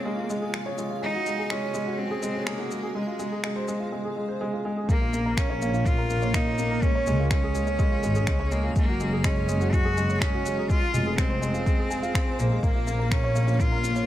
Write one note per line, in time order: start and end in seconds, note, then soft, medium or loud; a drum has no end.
0.00 0.05 G#3 medium
0.00 0.17 F4 medium
0.00 1.80 F4 medium
0.00 0.42 G#4 medium
0.00 0.66 C#5 medium
0.00 1.80 F5 medium
0.00 3.73 G#5 medium
0.05 0.12 G#3 loud
0.05 0.30 A#3 medium
0.17 0.29 F4 medium
0.29 0.78 G#3 medium
0.29 0.37 G#3 loud
0.29 shaker medium
0.42 0.48 G#4 medium
0.54 0.61 G#3 medium
0.54 finger snap medium
0.66 0.77 C#5 loud
0.78 0.90 G#3 medium
0.78 shaker medium
0.90 1.02 F4 medium
1.01 1.09 G#3 medium
1.01 1.52 D#4 loud
1.01 2.95 F#4 medium
1.14 1.26 F#4 medium
1.26 1.38 G#3 medium
1.26 shaker medium
1.39 1.50 G#4 medium
1.50 1.58 G#3 loud
1.50 2.00 C#4 loud
1.50 finger snap medium
1.63 1.74 C#4 medium
1.74 1.81 G#3 loud
1.74 shaker medium
1.85 1.93 F#4 medium
1.85 3.73 A#5 medium
1.98 2.05 G#3 medium
1.98 2.49 C4 loud
2.11 2.22 G#4 loud
2.23 2.34 G#3 loud
2.23 shaker medium
2.35 2.46 C#4 medium
2.46 2.54 G#3 medium
2.46 2.95 A#3 loud
2.46 finger snap medium
2.59 2.71 F#4 medium
2.71 2.83 G#3 medium
2.71 shaker medium
2.83 2.95 G#4 medium
2.95 3.02 G#3 loud
2.95 3.88 G#3 medium
3.07 3.19 F4 medium
3.19 3.26 G#3 loud
3.19 shaker medium
3.32 3.39 G#4 medium
3.44 3.51 G#3 medium
3.44 finger snap medium
3.56 3.68 C5 loud
3.68 3.80 G#3 loud
3.68 shaker medium
3.80 3.92 F4 medium
3.92 3.99 G#3 medium
4.04 4.16 G#4 medium
4.16 4.28 G#3 medium
4.28 4.40 C5 medium
4.41 4.48 G#3 loud
4.53 4.64 F4 medium
4.65 4.72 G#3 loud
4.77 4.84 G#4 medium
4.89 6.76 A#1 loud
4.89 4.96 A#3 medium
4.89 7.60 A#3 medium
4.89 5.40 A#3 loud
4.89 kick loud
4.89 shaker soft
4.98 5.13 F4 medium
4.98 7.60 A#4 medium
5.13 5.20 A#3 medium
5.13 shaker medium
5.26 5.33 A#4 medium
5.34 5.45 A#3 medium
5.34 10.70 C#5 medium
5.34 finger snap loud
5.34 kick loud
5.34 shaker soft
5.38 5.88 C#4 loud
5.50 5.61 C#5 loud
5.62 5.73 A#3 medium
5.62 shaker medium
5.74 5.85 F4 medium
5.74 shaker soft
5.86 5.93 A#3 medium
5.86 6.36 F4 loud
5.86 kick loud
5.86 shaker soft
5.98 6.10 A#4 medium
6.10 6.22 A#3 medium
6.10 shaker medium
6.22 6.34 C#5 medium
6.22 shaker soft
6.34 6.41 A#3 loud
6.34 6.85 D#4 loud
6.34 finger snap loud
6.34 kick loud
6.34 shaker soft
6.47 6.58 F4 medium
6.58 6.66 A#3 loud
6.58 shaker medium
6.71 6.78 A#4 medium
6.82 6.90 G#3 medium
6.82 9.36 C#4 medium
6.82 7.31 C#4 loud
6.82 kick loud
6.82 shaker soft
6.95 7.07 C#5 loud
7.07 7.48 C#2 loud
7.07 7.19 G#3 loud
7.07 shaker medium
7.19 7.31 F4 medium
7.31 7.38 G#3 medium
7.31 8.53 C#4 loud
7.31 finger snap loud
7.31 kick loud
7.31 shaker soft
7.43 7.55 G#4 medium
7.51 7.66 G#3 medium
7.51 11.48 G#5 medium
7.51 shaker medium
7.67 7.79 C#5 medium
7.67 shaker soft
7.79 7.86 G#3 loud
7.79 kick loud
7.79 shaker soft
7.91 8.03 F4 medium
8.03 8.19 G#1 medium
8.03 8.10 G#3 loud
8.03 shaker medium
8.15 8.22 G#4 medium
8.15 shaker soft
8.27 8.69 C#2 medium
8.27 8.34 G#3 medium
8.27 finger snap loud
8.27 kick loud
8.27 shaker soft
8.40 8.51 C#5 loud
8.51 8.63 G#3 medium
8.51 8.76 A#3 medium
8.51 shaker medium
8.64 8.76 F4 medium
8.76 10.63 F#1 loud
8.76 8.83 G#3 medium
8.76 9.27 A#3 loud
8.76 10.70 F#4 medium
8.76 kick loud
8.76 shaker soft
8.88 9.00 F#4 medium
9.00 9.12 G#3 medium
9.00 shaker medium
9.12 9.24 G#4 medium
9.24 9.31 G#3 loud
9.24 9.75 C#4 loud
9.24 finger snap medium
9.24 kick loud
9.24 shaker soft
9.35 9.48 C#4 medium
9.35 11.47 A#5 medium
9.48 9.55 G#3 loud
9.48 shaker medium
9.61 9.68 F#4 medium
9.61 shaker soft
9.72 9.80 G#3 medium
9.72 10.23 F#4 loud
9.72 kick loud
9.72 shaker soft
9.85 9.96 G#4 loud
9.97 10.09 G#3 loud
9.97 shaker medium
10.10 10.21 C#4 medium
10.10 shaker soft
10.21 10.28 G#3 medium
10.21 10.70 C#4 loud
10.21 finger snap medium
10.21 kick loud
10.21 shaker soft
10.34 10.45 F#4 medium
10.45 10.57 G#3 medium
10.45 shaker medium
10.58 10.69 G#4 medium
10.70 10.77 G#3 loud
10.70 11.20 F4 loud
10.70 13.41 G#4 medium
10.70 kick loud
10.70 shaker soft
10.76 12.63 C5 loud
10.82 10.93 F4 medium
10.89 14.06 F5 medium
10.94 11.36 F1 loud
10.94 11.01 G#3 medium
10.94 shaker medium
11.06 11.13 G#4 medium
11.18 11.25 G#3 medium
11.18 12.41 C4 loud
11.18 finger snap loud
11.18 kick loud
11.18 shaker soft
11.30 11.42 C5 loud
11.42 11.54 G#3 loud
11.42 shaker medium
11.54 11.66 F4 medium
11.54 shaker soft
11.66 11.73 G#3 medium
11.66 kick loud
11.66 shaker soft
11.78 11.90 G#4 medium
11.90 12.02 G#5 medium
11.90 shaker medium
12.03 12.14 F4 loud
12.03 shaker soft
12.15 12.26 C5 medium
12.15 finger snap medium
12.15 kick loud
12.15 shaker soft
12.28 12.38 C5 medium
12.39 12.55 A#1 loud
12.39 12.63 A#3 medium
12.39 12.46 C5 medium
12.39 shaker medium
12.52 12.58 G#3 medium
12.63 14.06 A#1 loud
12.63 14.06 A#3 medium
12.63 12.70 A#3 medium
12.63 13.13 A#3 loud
12.63 14.06 A#4 medium
12.63 kick loud
12.63 shaker soft
12.75 12.87 F4 medium
12.87 12.94 A#3 medium
12.87 shaker medium
12.99 13.06 A#4 medium
13.11 13.18 A#3 medium
13.11 13.62 C#4 loud
13.11 14.06 C#5 medium
13.11 finger snap medium
13.11 kick loud
13.11 shaker soft
13.24 13.35 C#5 loud
13.35 13.47 A#3 loud
13.35 shaker medium
13.47 13.59 F4 medium
13.47 shaker soft
13.60 13.67 A#3 medium
13.60 14.06 F4 loud
13.60 kick loud
13.60 shaker soft
13.72 13.83 A#4 medium
13.83 13.95 A#3 medium
13.83 shaker medium
13.96 14.06 C#5 medium
13.96 shaker soft